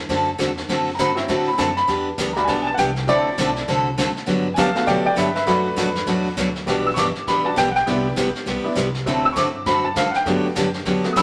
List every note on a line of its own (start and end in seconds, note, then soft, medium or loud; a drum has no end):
0.09 0.38 F#2 medium
0.09 0.29 D3 medium
0.09 0.29 A3 medium
0.09 0.29 C4 medium
0.09 0.29 F#4 medium
0.09 0.29 A4 medium
0.09 brush sweep soft
0.09 kick soft
0.09 snare soft
0.38 0.68 E2 medium
0.38 0.50 D3 medium
0.38 0.50 A3 medium
0.38 0.50 C4 medium
0.38 0.50 F#4 medium
0.38 0.50 A4 medium
0.38 kick soft
0.38 snare medium
0.38 hi-hat pedal soft
0.57 snare soft
0.69 0.98 F#2 medium
0.69 0.89 D3 medium
0.69 0.89 A3 medium
0.69 0.89 C4 medium
0.69 0.89 F#4 medium
0.69 0.89 A4 medium
0.69 brush sweep medium
0.69 kick soft
0.69 snare soft
0.95 1.28 G2 medium
0.95 1.10 D3 medium
0.95 1.10 A3 medium
0.95 0.98 A#5 medium
0.95 kick soft
0.95 snare medium
0.95 hi-hat pedal medium
0.99 1.10 C4 medium
0.99 1.10 F#4 medium
0.99 1.10 A4 medium
0.99 1.46 B5 medium
1.15 1.56 F#3 medium
1.15 1.56 C4 medium
1.15 1.56 E4 medium
1.15 snare soft
1.28 1.58 A2 medium
1.28 1.48 D3 medium
1.28 1.49 A3 medium
1.28 1.49 C4 medium
1.28 1.49 F#4 medium
1.28 1.49 A4 medium
1.28 brush sweep soft
1.28 kick soft
1.28 snare soft
1.48 1.59 B5 medium
1.58 1.87 F#2 medium
1.58 1.69 D3 medium
1.58 1.69 A3 medium
1.58 1.70 C4 medium
1.58 1.70 F#4 medium
1.58 1.70 A4 medium
1.58 1.76 A5 medium
1.58 kick soft
1.58 snare medium
1.58 hi-hat pedal medium
1.77 2.06 B5 medium
1.77 snare soft
1.87 2.17 E2 medium
1.87 2.08 E3 medium
1.87 2.08 B3 medium
1.87 2.08 D4 medium
1.87 2.08 G4 medium
1.87 brush sweep soft
1.87 kick soft
1.87 snare soft
2.18 2.47 D2 medium
2.18 2.29 E3 medium
2.18 2.29 B3 medium
2.18 2.30 D4 medium
2.18 2.30 G4 medium
2.18 kick soft
2.18 snare medium
2.18 hi-hat pedal medium
2.33 2.54 G3 medium
2.33 2.54 D4 medium
2.33 2.55 F#4 medium
2.33 2.35 A#5 medium
2.33 snare soft
2.38 2.48 B5 medium
2.44 2.77 B1 medium
2.44 2.68 E3 medium
2.44 2.68 B3 medium
2.44 2.68 D4 medium
2.44 2.47 G#5 medium
2.44 brush sweep soft
2.44 kick soft
2.44 snare soft
2.49 2.68 G4 medium
2.49 2.65 A5 loud
2.62 2.64 G#5 medium
2.67 2.78 A5 medium
2.74 3.07 C2 medium
2.74 2.89 E3 medium
2.74 2.89 B3 medium
2.74 2.77 F#5 medium
2.74 kick soft
2.74 snare medium
2.74 hi-hat pedal medium
2.79 2.89 D4 medium
2.79 2.89 G4 medium
2.79 3.07 G5 medium
2.96 snare soft
3.07 3.37 D2 medium
3.07 3.28 D3 medium
3.07 4.23 F#3 medium
3.07 3.28 A3 medium
3.07 4.23 C4 soft
3.07 3.28 C4 medium
3.07 4.24 E4 medium
3.07 3.28 F#4 medium
3.07 3.28 A4 medium
3.07 3.66 D5 loud
3.07 brush sweep soft
3.07 kick soft
3.07 snare soft
3.38 3.67 B1 loud
3.38 3.49 D3 medium
3.38 3.49 A3 medium
3.38 3.49 C4 medium
3.38 3.49 F#4 medium
3.38 3.50 A4 medium
3.38 kick soft
3.38 snare medium
3.38 hi-hat pedal medium
3.56 snare soft
3.68 3.97 C2 medium
3.68 3.88 D3 medium
3.68 3.88 A3 medium
3.68 3.88 C4 medium
3.68 3.88 F#4 medium
3.68 3.88 A4 medium
3.68 brush sweep medium
3.68 kick soft
3.68 snare soft
3.98 4.15 D2 medium
3.98 4.09 D3 medium
3.98 4.09 A3 medium
3.98 4.09 C4 medium
3.98 4.09 F#4 medium
3.98 4.09 A4 medium
3.98 kick soft
3.98 snare medium
3.98 hi-hat pedal medium
4.16 muted upright bass stroke soft
4.16 snare soft
4.26 4.57 G2 medium
4.26 4.47 D3 medium
4.26 4.47 F#3 medium
4.26 4.47 B3 medium
4.26 4.47 D4 medium
4.26 4.47 G4 medium
4.26 brush sweep soft
4.26 kick soft
4.26 snare soft
4.54 4.86 A2 medium
4.54 4.68 D3 medium
4.54 4.68 F#3 medium
4.54 4.68 B3 medium
4.54 4.68 D4 medium
4.54 4.69 G4 medium
4.54 4.57 G#5 medium
4.54 kick soft
4.54 snare medium
4.54 hi-hat pedal medium
4.58 4.75 F5 medium
4.58 4.75 A5 loud
4.75 5.15 A3 medium
4.75 5.15 B3 medium
4.75 5.15 F#4 medium
4.75 4.87 F5 medium
4.75 4.88 A5 medium
4.75 snare soft
4.86 5.04 B2 medium
4.86 5.07 D3 medium
4.86 5.07 F#3 medium
4.86 5.07 B3 medium
4.86 5.07 D4 medium
4.86 5.07 G4 medium
4.86 5.04 D5 medium
4.86 5.05 G5 medium
4.86 brush sweep soft
4.86 kick soft
4.86 snare soft
5.05 5.17 D5 medium
5.05 5.17 G5 medium
5.05 muted upright bass stroke soft
5.16 5.46 G2 medium
5.16 5.28 D3 medium
5.16 5.28 F#3 medium
5.16 5.28 B3 medium
5.16 5.28 D4 medium
5.16 5.28 G4 medium
5.16 5.34 B4 medium
5.16 5.34 E5 medium
5.16 kick soft
5.16 snare medium
5.16 hi-hat pedal medium
5.35 5.46 B4 medium
5.35 5.47 E5 medium
5.35 snare soft
5.46 5.76 F#2 medium
5.46 5.67 B2 medium
5.46 5.67 F#3 medium
5.46 6.62 A3 soft
5.46 5.67 A3 medium
5.46 6.63 D4 soft
5.46 5.67 D4 medium
5.46 6.63 F#4 medium
5.46 5.67 F#4 medium
5.46 6.35 B4 loud
5.46 brush sweep soft
5.46 kick soft
5.46 snare soft
5.76 6.06 F2 medium
5.76 5.88 B2 medium
5.76 5.88 F#3 medium
5.76 5.88 A3 medium
5.76 5.88 D4 medium
5.76 5.88 F#4 medium
5.76 kick soft
5.76 snare medium
5.76 hi-hat pedal medium
5.95 snare soft
6.07 6.36 E2 medium
6.07 6.27 B2 medium
6.07 6.27 F#3 medium
6.07 6.27 A3 medium
6.07 6.27 D4 medium
6.07 6.27 F#4 medium
6.07 brush sweep medium
6.07 kick soft
6.07 snare soft
6.37 6.66 D2 medium
6.37 6.48 B2 medium
6.37 6.48 F#3 medium
6.37 6.48 A3 medium
6.37 6.48 D4 medium
6.37 6.48 F#4 medium
6.37 kick soft
6.37 snare medium
6.37 hi-hat pedal medium
6.56 snare soft
6.66 6.96 B1 medium
6.66 6.87 B2 medium
6.66 6.87 E3 medium
6.66 6.88 G3 medium
6.66 6.87 B3 medium
6.66 6.89 D4 soft
6.66 6.87 D4 medium
6.66 6.89 F#4 medium
6.66 6.87 G4 medium
6.66 brush sweep soft
6.66 kick soft
6.66 snare soft
6.87 6.97 E6 medium
6.94 7.14 G1 medium
6.94 7.07 B2 medium
6.94 7.08 E3 medium
6.94 7.08 B3 medium
6.94 7.08 D4 medium
6.94 7.08 G4 medium
6.94 6.96 C#6 medium
6.94 kick soft
6.94 snare medium
6.94 hi-hat pedal medium
6.98 7.27 D6 loud
7.15 muted upright bass stroke soft
7.15 snare soft
7.27 7.56 A1 medium
7.27 7.47 B2 medium
7.27 7.47 E3 medium
7.27 7.47 B3 medium
7.27 7.47 D4 medium
7.27 7.47 G4 medium
7.27 7.45 B5 medium
7.27 brush sweep medium
7.27 kick soft
7.27 snare soft
7.44 7.55 G3 soft
7.44 7.55 D4 soft
7.44 7.55 F#4 medium
7.44 7.57 A5 medium
7.56 7.86 B1 loud
7.56 7.67 B2 medium
7.56 7.68 E3 medium
7.56 7.68 B3 medium
7.56 7.68 D4 medium
7.56 7.68 G4 medium
7.56 7.74 G5 loud
7.56 kick soft
7.56 snare medium
7.56 hi-hat pedal medium
7.71 7.73 F#5 medium
7.75 8.62 G5 medium
7.75 snare soft
7.86 8.16 C2 medium
7.86 8.07 C3 medium
7.86 8.07 G3 medium
7.86 8.08 B3 medium
7.86 8.07 B3 medium
7.86 8.08 D4 soft
7.86 8.09 E4 medium
7.86 8.07 E4 medium
7.86 8.07 G4 medium
7.86 brush sweep soft
7.86 kick soft
7.86 snare soft
8.16 8.33 A1 loud
8.16 8.27 C3 medium
8.16 8.28 G3 medium
8.16 8.28 B3 medium
8.16 8.28 E4 medium
8.16 8.28 G4 medium
8.16 kick soft
8.16 snare medium
8.16 hi-hat pedal medium
8.35 snare soft
8.46 8.63 B1 medium
8.46 8.66 C3 medium
8.46 8.66 G3 medium
8.46 8.66 B3 medium
8.46 8.67 E4 medium
8.46 8.67 G4 medium
8.46 brush sweep medium
8.46 kick soft
8.46 snare soft
8.64 8.75 B3 soft
8.64 8.75 D4 soft
8.64 8.75 E4 medium
8.64 muted upright bass stroke soft
8.75 9.05 C2 medium
8.75 8.87 C3 medium
8.75 8.87 G3 medium
8.75 8.87 B3 medium
8.75 8.87 E4 medium
8.75 8.87 G4 medium
8.75 kick soft
8.75 snare medium
8.75 hi-hat pedal medium
8.95 snare soft
9.06 9.35 D2 medium
9.06 9.26 D3 medium
9.06 9.52 F#3 medium
9.06 9.27 A3 medium
9.06 9.52 C4 soft
9.06 9.26 C4 medium
9.06 9.52 E4 medium
9.06 9.27 F#4 medium
9.06 9.27 A4 medium
9.06 brush sweep soft
9.06 kick soft
9.06 snare soft
9.25 9.36 E6 loud
9.33 9.65 G2 medium
9.33 9.47 D3 medium
9.33 9.47 A3 medium
9.33 9.47 C4 medium
9.33 9.35 C#6 medium
9.33 kick soft
9.33 snare medium
9.33 hi-hat pedal medium
9.37 9.47 F#4 medium
9.37 9.48 A4 medium
9.37 9.66 D6 loud
9.65 9.95 F#2 medium
9.65 9.86 D3 medium
9.65 9.86 A3 medium
9.65 9.86 C4 medium
9.65 9.86 F#4 medium
9.65 9.86 A4 medium
9.65 9.84 B5 medium
9.65 brush sweep soft
9.65 kick soft
9.65 snare soft
9.85 9.96 A5 medium
9.95 10.13 A2 medium
9.95 10.07 D3 medium
9.95 10.07 A3 medium
9.95 10.08 C4 medium
9.95 10.08 F#4 medium
9.95 10.08 A4 medium
9.95 10.14 F5 medium
9.95 kick soft
9.95 snare medium
9.95 hi-hat pedal medium
10.11 10.13 F#5 medium
10.11 muted upright bass stroke soft
10.11 snare soft
10.16 11.02 G5 medium
10.25 10.43 G2 medium
10.25 10.46 D3 medium
10.25 10.46 F#3 medium
10.25 10.47 A3 medium
10.25 10.48 B3 soft
10.25 10.46 B3 medium
10.25 10.46 D4 medium
10.25 10.48 F#4 medium
10.25 10.47 G4 medium
10.25 brush sweep soft
10.25 kick soft
10.25 snare soft
10.44 muted upright bass stroke soft
10.55 10.85 F#2 medium
10.55 10.67 D3 medium
10.55 10.67 F#3 medium
10.55 10.67 B3 medium
10.55 10.67 D4 medium
10.55 10.67 G4 medium
10.55 kick soft
10.55 snare medium
10.55 hi-hat pedal medium
10.74 snare soft
10.85 11.03 E2 medium
10.85 11.05 D3 medium
10.85 11.06 F#3 medium
10.85 11.06 B3 medium
10.85 11.06 D4 medium
10.85 11.06 G4 medium
10.85 brush sweep soft
10.85 kick soft
10.85 snare soft
11.04 11.15 A3 soft
11.04 11.15 B3 soft
11.04 11.15 F#4 medium
11.04 muted upright bass stroke soft
11.04 snare soft
11.13 11.22 D2 medium
11.13 11.22 D3 medium
11.13 11.22 F#3 medium
11.13 11.22 B3 medium
11.13 11.15 D#6 medium
11.13 kick soft
11.13 snare medium
11.13 hi-hat pedal medium
11.17 11.22 D4 medium
11.17 11.22 G4 medium
11.17 11.22 B5 medium
11.17 11.22 E6 loud